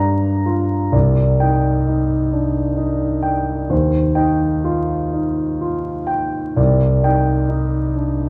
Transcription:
Already playing: G2 D5 A#5
0.46 F4
0.92 C2 D5
1.40 D#4 G5
1.87 D#4
2.32 D4
2.76 D#4
3.22 G5
3.70 D#2 C5
4.15 D#4 G5
4.64 F4
5.12 D#4
5.61 F4
6.07 G5
6.56 C2 D5
7.03 D#4 G5
7.48 D#4
7.95 D4

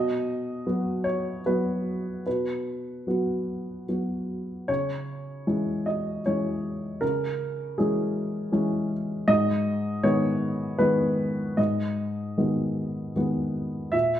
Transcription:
Already playing: B2 D#5
0.67 F#3 B3 F#4
1.04 C#5
1.46 F#3 B3 F#4 B4
2.26 B2 B4
3.07 F#3 B3 F#4
3.89 F#3 B3 F#4
4.68 C#3 C#5
5.47 E3 G#3 C#4
5.86 D#5
6.26 E3 G#3 C#4 C#5
7.01 C#3 A#4
7.78 E3 G#3 C#4 G#4
8.52 E3 G#3 C#4
9.28 G#2 D#5
10.03 D#3 G#3 B3 C#5
10.79 D#3 G#3 B3 B4
11.57 G#2 D#5
12.38 D#3 G#3 B3
13.16 D#3 G#3 B3
13.92 A#2 E5

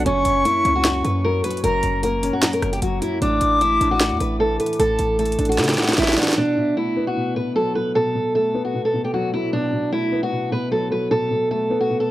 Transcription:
0.06 F#1 F#2 C#4 C#6, closed hi-hat
0.25 F#1 F#2, closed hi-hat
0.45 A#3 E4, closed hi-hat
0.65 C#2 C#4, closed hi-hat
0.76 F#4
0.85 F#2, snare, closed hi-hat
1.04 F#2 B4, closed hi-hat
1.24 F#3 A#4
1.44 F#3 B4, closed hi-hat
1.51 closed hi-hat
1.57 closed hi-hat
1.64 F#1 F#2 A#4 A#5, closed hi-hat
1.83 F#1 F#2, closed hi-hat
2.03 A#3 A#4, closed hi-hat
2.23 C#4, closed hi-hat
2.33 F#4
2.43 F#2, snare, closed hi-hat
2.53 A#4, closed hi-hat
2.62 F#1 F#2, cross-stick, closed hi-hat
2.73 G4, closed hi-hat
2.82 F#1 F#3 F#4, closed hi-hat
3.02 F#3 E4, closed hi-hat
3.22 A1 A2 D4 D6, closed hi-hat
3.41 A1 A2, closed hi-hat
3.61 A3 E4, closed hi-hat
3.81 A1 D4, closed hi-hat
3.91 F#4
4.01 A2, snare, closed hi-hat
4.11 E2
4.20 A1 A2 B4, closed hi-hat
4.40 E3 A4
4.60 E3 B4, closed hi-hat
4.66 closed hi-hat
4.73 closed hi-hat
4.79 A1 A2 A4 A5, closed hi-hat
4.99 A1 A2, closed hi-hat
5.19 A3 A4, closed hi-hat
5.26 closed hi-hat
5.32 closed hi-hat
5.39 A1 D4, closed hi-hat
5.45 F#4, closed hi-hat
5.52 closed hi-hat
5.58 A2 C#3, snare, closed hi-hat
5.64 snare, closed hi-hat
5.69 G4, snare, closed hi-hat
5.73 snare, closed hi-hat
5.78 A2 F#5, snare, closed hi-hat
5.83 snare, closed hi-hat
5.89 F#4, snare, closed hi-hat
5.93 snare, closed hi-hat
5.98 A1 E3 E4 E5, snare, closed hi-hat
6.03 snare
6.08 snare
6.13 snare
6.17 E3 D4 F#5, snare, closed hi-hat
6.23 snare, closed hi-hat
6.28 snare, closed hi-hat
6.33 snare
6.37 B2 D4
6.57 B2
6.77 A3 E4
6.97 B3
7.07 F#4
7.16 B2
7.36 B2 B4
7.56 F#3 A4
7.75 F#3 B4
7.95 B2 A4
8.15 B2
8.35 A3 A4
8.54 B3
8.65 F#4
8.74 B2
8.85 A4
8.94 B2
9.04 G4
9.14 F#3 F#4
9.33 F#3 E4
9.53 B2 D4
9.73 B2
9.92 A3 E4
10.12 B3
10.23 F#4
10.32 B2
10.52 B2 B4
10.71 F#3 A4
10.91 F#3 B4
11.11 B2 A4
11.31 B2
11.51 A3 A4
11.70 B3
11.81 F#4
11.90 B2
12.00 A4

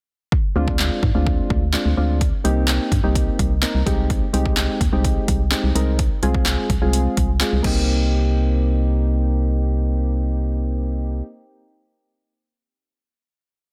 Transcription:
0.32 kick
0.56 D2 G#3 C4 D4 F4
0.68 kick
0.79 snare, clap
1.03 G#2, kick
1.15 D2 G#3 C4 D4 F4
1.27 kick
1.50 D2, kick
1.73 G#3 C4 D4 F4, snare, clap
1.86 D2
1.97 D2 G#3 C4 D4 F4
2.21 kick, closed hi-hat
2.44 C2 A#3 C4 D#4 G4, closed hi-hat
2.67 snare, clap, closed hi-hat
2.92 G2, kick, closed hi-hat
3.03 C2 A#3 C4 D#4 G4
3.15 kick, closed hi-hat
3.39 C2, kick, closed hi-hat
3.62 A#3 C4 D#4 A#4, snare, clap, closed hi-hat
3.75 C2
3.86 C2 G#3 C4 D#4 G4, kick, closed hi-hat
4.10 kick, closed hi-hat
4.33 C2 G#3 C4 D#4 G4, closed hi-hat
4.46 kick
4.57 snare, clap, closed hi-hat
4.81 D#2, kick, closed hi-hat
4.92 C2 G#3 C4 D#4 G4
5.04 kick, closed hi-hat
5.28 C2, kick, closed hi-hat
5.51 G#3 C4 D#4 G4, snare, clap, closed hi-hat
5.64 C2
5.75 C2 G#3 C4 D#4 A#4, closed hi-hat
5.99 kick, closed hi-hat
6.23 C2 G#3 C4 F4 G#4, closed hi-hat
6.35 kick
6.45 snare, clap, closed hi-hat
6.70 C2, kick, closed hi-hat
6.82 C2 G#3 C4 F4 G#4
6.93 closed hi-hat
7.17 C2, kick, closed hi-hat
7.40 G#3 C4 F4 G#4, snare, clap, closed hi-hat
7.53 C2
7.63 C2 A#3 C4 D#4 G4, kick, crash

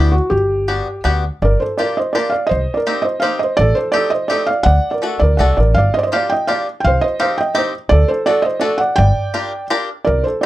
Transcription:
Already playing: D2 B3 D4 E4 F#4 G4
0.12 F#4
0.30 G1 G4
0.68 B3 D4 F#4 G4
1.04 D2 B3 D4 F#4 G4
1.42 G1 A#4 D5
1.60 A4 C5
1.77 A#3 D4 F4 G4 A#4 D5
1.97 C5 D#5
2.13 A#3 D4 F4 G4 A#4 D5
2.30 D5 F5
2.47 C5 D#5
2.51 C2
2.74 A#4 D5
2.87 A#3 C4 D#4 G4
3.02 C5 D#5
3.20 A#3 C4 D#4 G4 C5 F5
3.39 D#5
3.44 C5
3.57 A1 A4 D5
3.75 A4 C5
3.92 A3 C4 D#4 G4 A4 D5
4.10 C5 D#5
4.28 A3 C4 D#4 G4 A4 D5
4.47 F5
4.51 D5
4.63 D2 D5 F#5
4.91 A#4 D5
5.02 A3 D4 F#4 A4
5.20 D2 A#4 D5
5.37 C2 A3 D4 F#4 A4 D5 F#5
5.57 A1 A#4 D5
5.74 G1 D5 F5
5.94 C5 D#5
5.99 D5
6.03 C5 D#5
6.12 A#3 D4 F4 G4 F5
6.16 D5
6.30 D#5 G5
6.47 A#3 D4 F4 G4 D5 F5
6.80 G5
6.84 C2 C5 F5
7.01 C5 D#5
7.20 A#3 C4 D#4 G4 C5 F5
7.38 D#5 G5
7.55 A#3 C4 D#4 G4 C5 D#5
7.89 D2 A4 D5
8.08 A4 C5
8.26 A3 D4 F#4 A4 D5
8.42 C5 D#5
8.60 A3 D4 F#4 A4 D5
8.78 D5 F#5
8.96 G1 D5 G5
9.34 D4 F4 G4 A#4
9.70 D4 F4 G4 A#4
10.05 C2 A#4 D5
10.24 A4 C5
10.41 D5

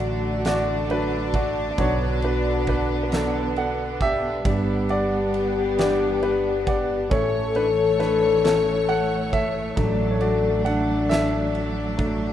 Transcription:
Already playing: A1 D3 F#3 A3 D4 F#4 D5
0.00 ride
0.45 F#4 D5, snare, ride
0.89 F#3 A3 D4 B4, ride
1.34 F#4 D5, kick, ride
1.71 D5
1.78 B1 F#3 B3 D4 F#4 C#5, kick, ride
2.22 D4 B4, ride
2.67 D4 B4, kick, ride
3.03 B4
3.12 F#3 B3 D4 A4, snare, ride
3.56 A4 F#5, ride
4.01 G4 E5, kick, ride
4.45 G1 G3 B3 D4 G4, kick, ride
4.89 D5 F#5, ride
5.34 ride
5.78 G3 B3 D4 G4 D5, snare, ride
6.23 D4 B4, ride
6.67 D5 F#5, kick, ride
7.10 A1 E3 A3 C#4 E4 A4 C#5, kick, ride
7.55 D4 B4, ride
8.00 D4 B4, snare, ride
8.44 C#4 A4, snare, ride
8.89 A4 F#5, ride
9.33 A4 E5, kick, ride
9.76 A1 F#3 A3 D4 A4, kick, ride
10.11 C#5
10.21 F#4 D5, ride
10.65 D4 A4 F#5, ride
11.09 A4 E5, snare, ride
11.55 ride
11.97 F#3 A3 D4, kick, ride

